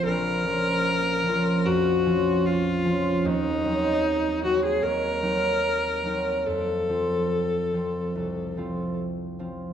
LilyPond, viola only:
\new Staff \with { instrumentName = "Viola" } { \time 4/4 \key bes \minor \tempo 4 = 74 bes'2 ges'4 f'4 | ees'4. ges'16 aes'16 bes'2 | a'2. r4 | }